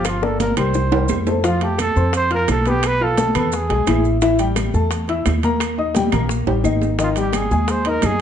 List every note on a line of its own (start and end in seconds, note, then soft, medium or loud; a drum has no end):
0.00 0.51 G1 medium
0.00 0.16 F3 medium
0.00 0.16 F4 medium
0.00 0.16 F5 medium
0.05 0.26 F4 medium
0.05 high bongo loud
0.05 high timbale medium
0.05 claves medium
0.05 maracas medium
0.22 0.51 A#3 medium
0.22 0.41 A4 medium
0.22 0.51 A#4 medium
0.22 0.51 D5 medium
0.22 high bongo loud
0.22 high conga soft
0.40 0.57 A#4 medium
0.40 high bongo medium
0.40 high conga loud
0.40 high timbale medium
0.40 low timbale medium
0.40 maracas medium
0.57 1.06 C2 medium
0.57 0.86 G3 medium
0.57 0.86 G4 medium
0.57 0.86 A#4 medium
0.57 1.23 C5 medium
0.57 low bongo medium
0.57 high conga soft
0.57 high timbale medium
0.57 claves medium
0.57 maracas soft
0.74 low bongo medium
0.74 high conga soft
0.74 maracas medium
0.92 1.20 G3 medium
0.92 1.21 G4 medium
0.92 1.21 A#4 medium
0.92 low bongo medium
0.92 high conga soft
0.92 high timbale loud
1.08 1.91 F2 medium
1.08 high conga medium
1.08 low timbale medium
1.08 claves medium
1.08 maracas medium
1.27 1.41 A3 medium
1.27 1.42 A4 medium
1.27 1.42 C5 medium
1.27 low bongo medium
1.27 high conga soft
1.27 low timbale medium
1.27 maracas soft
1.44 1.58 F3 medium
1.44 1.59 F4 medium
1.44 1.65 F4 medium
1.44 1.59 F5 medium
1.44 high bongo medium
1.44 high conga soft
1.44 high timbale medium
1.44 maracas medium
1.61 1.90 A3 medium
1.61 1.80 G4 medium
1.61 1.90 A4 medium
1.61 1.90 A5 medium
1.61 high conga soft
1.61 high timbale medium
1.78 2.12 A4 medium
1.78 high bongo medium
1.78 high conga medium
1.78 high timbale medium
1.78 low timbale medium
1.78 claves medium
1.78 maracas medium
1.96 2.45 F2 medium
1.96 2.25 C4 medium
1.96 2.25 C5 medium
1.96 2.25 C6 medium
1.96 high bongo soft
1.96 maracas soft
2.13 2.31 C5 loud
2.13 high bongo medium
2.13 high conga soft
2.13 high timbale medium
2.13 maracas medium
2.31 2.59 F4 medium
2.31 2.49 A#4 medium
2.31 2.60 F5 medium
2.31 2.60 F6 medium
2.31 high bongo soft
2.31 high conga soft
2.31 high timbale medium
2.48 3.30 B1 medium
2.48 2.70 A4 medium
2.48 high bongo soft
2.48 low bongo medium
2.48 high conga medium
2.48 high timbale medium
2.48 low timbale medium
2.48 claves medium
2.48 maracas medium
2.65 2.95 B3 medium
2.65 2.88 G4 loud
2.65 2.95 B4 medium
2.65 2.95 B5 medium
2.65 high bongo soft
2.65 high timbale medium
2.65 maracas soft
2.83 3.05 B4 loud
2.83 high bongo medium
2.83 high conga soft
2.83 high timbale medium
2.83 claves medium
2.83 maracas medium
3.01 3.15 F4 medium
3.01 3.37 A4 medium
3.01 3.15 F5 medium
3.01 3.15 F6 medium
3.01 high conga soft
3.17 3.32 A3 medium
3.17 3.32 A4 medium
3.17 3.32 A5 medium
3.17 high bongo medium
3.17 high conga loud
3.17 high timbale medium
3.17 low timbale medium
3.17 maracas medium
3.34 3.68 E2 medium
3.34 3.63 B3 medium
3.34 3.57 A4 medium
3.34 3.64 B4 medium
3.34 3.64 B5 medium
3.34 high conga soft
3.34 low conga medium
3.34 high timbale medium
3.34 claves medium
3.34 maracas soft
3.52 4.06 G#4 medium
3.52 high bongo medium
3.52 maracas medium
3.69 3.86 B1 medium
3.69 3.84 G#3 medium
3.69 3.84 G#4 medium
3.69 3.84 G#5 medium
3.69 high bongo soft
3.69 high conga soft
3.69 high timbale medium
3.87 4.68 A1 medium
3.87 4.16 E3 medium
3.87 4.16 E4 medium
3.87 4.16 E5 medium
3.87 high bongo soft
3.87 low bongo medium
3.87 high conga medium
3.87 high timbale medium
3.87 low timbale medium
3.87 claves medium
3.87 maracas medium
4.04 high bongo soft
4.04 high conga soft
4.04 maracas soft
4.22 4.36 E3 medium
4.22 4.36 E4 medium
4.22 4.37 E5 medium
4.22 high bongo medium
4.22 high timbale medium
4.22 maracas medium
4.39 4.68 G3 medium
4.39 4.68 G4 medium
4.39 4.68 G5 medium
4.39 high conga soft
4.39 high timbale medium
4.39 maracas medium
4.56 high bongo medium
4.56 high conga medium
4.56 high timbale medium
4.56 low timbale medium
4.56 claves medium
4.56 maracas medium
4.74 5.22 E2 medium
4.74 5.03 A3 medium
4.74 5.03 A4 medium
4.74 5.03 A5 medium
4.74 high bongo soft
4.74 maracas soft
4.91 high bongo medium
4.91 high conga soft
4.91 high timbale medium
4.91 maracas medium
5.08 5.37 E4 medium
5.08 5.38 E5 medium
5.08 5.38 E6 medium
5.08 high bongo soft
5.08 high conga soft
5.08 high timbale medium
5.26 6.07 D#2 medium
5.26 high bongo soft
5.26 low bongo medium
5.26 high conga medium
5.26 high timbale medium
5.26 low timbale medium
5.26 claves medium
5.26 maracas medium
5.43 5.72 A#3 medium
5.43 5.72 A#4 medium
5.43 5.73 A#5 medium
5.43 high bongo soft
5.43 high conga medium
5.43 high timbale medium
5.43 maracas soft
5.60 high bongo medium
5.60 high conga soft
5.60 high timbale medium
5.60 claves medium
5.60 maracas medium
5.78 5.92 D#4 medium
5.78 5.93 D#5 medium
5.78 5.93 D#6 medium
5.78 high conga soft
5.95 6.10 G3 medium
5.95 6.10 G4 medium
5.95 6.10 G5 medium
5.95 high bongo medium
5.95 high conga loud
5.95 high timbale medium
5.95 low timbale medium
5.95 maracas medium
6.12 6.45 A#1 loud
6.12 6.41 A#3 medium
6.12 6.41 A#4 medium
6.12 6.41 A#5 medium
6.12 high bongo soft
6.12 high conga soft
6.12 low conga medium
6.12 high timbale medium
6.12 claves medium
6.12 maracas soft
6.29 high bongo medium
6.29 high conga soft
6.29 maracas medium
6.47 6.64 A1 medium
6.47 6.61 G3 medium
6.47 6.61 G4 medium
6.47 6.62 G5 medium
6.47 high bongo soft
6.47 high conga soft
6.47 high timbale medium
6.63 7.46 G#1 medium
6.63 6.92 D#3 medium
6.63 6.93 D#4 medium
6.63 6.93 D#5 medium
6.63 high bongo soft
6.63 low bongo medium
6.63 high conga medium
6.63 claves medium
6.63 maracas medium
6.81 high bongo soft
6.81 high conga soft
6.81 low timbale medium
6.81 maracas soft
6.99 7.13 D#3 medium
6.99 7.13 D#4 medium
6.99 7.10 F4 medium
6.99 7.13 D#5 medium
6.99 high bongo medium
6.99 high timbale medium
6.99 maracas medium
7.16 7.45 G3 medium
7.16 7.45 G4 medium
7.16 7.38 G4 medium
7.16 7.45 G5 medium
7.16 high conga soft
7.16 high timbale medium
7.16 maracas medium
7.33 7.72 G#4 medium
7.33 high bongo medium
7.33 high conga medium
7.33 high timbale medium
7.33 low timbale medium
7.33 claves medium
7.33 maracas medium
7.51 8.00 D#2 loud
7.51 7.80 G#3 medium
7.51 7.80 G#4 medium
7.51 7.80 G#5 medium
7.51 high bongo soft
7.51 maracas soft
7.68 7.90 C5 medium
7.68 high bongo medium
7.68 high conga soft
7.68 high timbale medium
7.68 maracas medium
7.85 8.14 D#4 medium
7.85 8.07 A#4 medium
7.85 8.14 D#5 medium
7.85 8.14 D#6 medium
7.85 high bongo soft
7.85 high conga soft
7.85 high timbale medium
8.02 8.21 F#2 medium
8.02 8.21 G#4 medium
8.02 high bongo soft
8.02 low bongo medium
8.02 high conga medium
8.02 high timbale medium
8.02 low timbale medium
8.02 claves medium
8.02 maracas medium